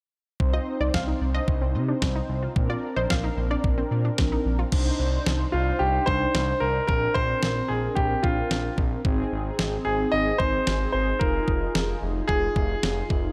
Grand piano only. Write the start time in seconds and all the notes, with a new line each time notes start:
5.52 F4
5.79 G4
6.06 C5
6.60 A#4
6.87 A#4
7.14 C5
7.68 G#4
7.95 G4
8.23 F4
9.85 G#4
10.12 D#5
10.38 C5
10.92 C5
11.19 A#4
12.28 G#4